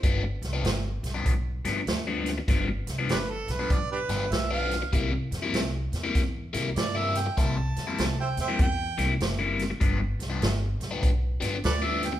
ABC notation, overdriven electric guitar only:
X:1
M:4/4
L:1/16
Q:"Swing" 1/4=98
K:Gmix
V:1 name="Overdriven electric guitar" clef=bass
[G,,F,B,D] z2 [G,,F,B,D] z3 [G,,F,B,D] z2 [G,,F,B,D] z2 [G,,F,B,D] z2 | [G,,F,B,D] z2 [G,,F,B,D] z3 [G,,F,B,D] z2 [G,,F,B,D] z2 [G,,F,B,D] z2 | [C,G,_B,E] z2 [C,G,B,E] z3 [C,G,B,E] z2 [C,G,B,E] z2 [C,G,B,E] z2 | [C,G,_B,E] z2 [C,G,B,E] z3 [C,G,B,E] z2 [C,G,B,E] z2 [C,G,B,E] z2 |
[G,,F,B,D] z2 [G,,F,B,D] z3 [G,,F,B,D] z2 [G,,F,B,D] z2 [G,,F,B,D] z2 |]